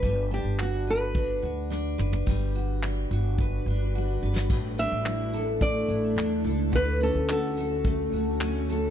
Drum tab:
CC |----------------|x---------------|x---------------|----------------|
TB |----------------|--x---x---------|--x---x---x---x-|--x---x---x---x-|
CP |----x-----------|----x-----------|----x-------x---|----x-------x---|
SD |------------o---|---------------o|----------------|----------------|
T2 |--------------o-|----------------|----------------|----------------|
FT |---------------o|----------------|----------------|----------------|
BD |o-------o-------|o-------o-------|o-------o-------|o-------o-------|